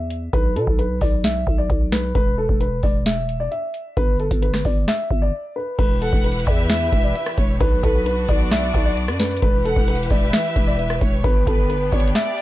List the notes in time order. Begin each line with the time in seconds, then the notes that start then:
Already playing: E2 E5
0.10 closed hi-hat
0.33 B1 B4, kick, closed hi-hat
0.56 B2 A4, closed hi-hat
0.67 B1, kick
0.79 B4, closed hi-hat
1.01 B1 D5, kick, open hi-hat
1.24 E5, snare, closed hi-hat
1.47 B1, kick
1.58 D5
1.70 B1, kick, closed hi-hat
1.92 B4, snare, closed hi-hat
2.15 E1 B4, kick, closed hi-hat
2.38 A4
2.49 E1, kick
2.61 B4, closed hi-hat
2.83 E1 D5, kick, open hi-hat
3.06 E5, snare, closed hi-hat
3.29 closed hi-hat
3.40 D5
3.51 E5, closed hi-hat
3.74 closed hi-hat
3.97 G1 B4, kick, closed hi-hat
4.20 A4, closed hi-hat
4.31 G1, kick, closed hi-hat
4.42 B4, closed hi-hat
4.54 cross-stick, snare
4.65 G1 D5, kick, open hi-hat
4.88 E5, snare, closed hi-hat
5.11 G1, kick
5.22 D5
5.56 B4
5.79 E1 E3 E4 G4 B4, kick, closed hi-hat, crash
6.01 A4 F#5, closed hi-hat
6.13 E1, kick
6.24 B4, closed hi-hat
6.32 closed hi-hat
6.39 closed hi-hat
6.47 E2 D5 E5, kick, open hi-hat
6.70 E5, snare, closed hi-hat
6.92 E1, kick, closed hi-hat
7.04 D5
7.15 E5, closed hi-hat
7.26 cross-stick
7.38 E1 C#5, kick, closed hi-hat
7.60 B1 B3 D4 F#4 B4, kick, closed hi-hat
7.83 B1 A4 B4, kick, closed hi-hat
8.06 B4, closed hi-hat
8.28 B1 D5, kick, closed hi-hat
8.51 E5, snare, closed hi-hat
8.74 B1, kick, closed hi-hat
8.85 D5
8.97 closed hi-hat
9.08 F#2, cross-stick
9.20 B4, snare, closed hi-hat
9.25 closed hi-hat
9.31 closed hi-hat
9.37 closed hi-hat
9.42 E1 E3 E4 G4 B4, kick, closed hi-hat
9.65 A4 F#5, closed hi-hat
9.76 E1, kick
9.88 B4, closed hi-hat
9.95 closed hi-hat
10.03 closed hi-hat
10.10 E1 D5 E5, kick, open hi-hat
10.33 E5, snare, closed hi-hat
10.56 E1, kick, closed hi-hat
10.67 D5
10.79 E5, closed hi-hat
10.90 cross-stick
11.01 E1 C#5, kick, closed hi-hat
11.24 G1 B3 D4 G4 B4, kick, closed hi-hat
11.47 G1 A4 B4, kick, closed hi-hat
11.70 B4, closed hi-hat
11.92 G1 C#5 D5, kick, closed hi-hat
12.00 closed hi-hat
12.08 closed hi-hat
12.15 D5 E5, snare, closed hi-hat
12.38 closed hi-hat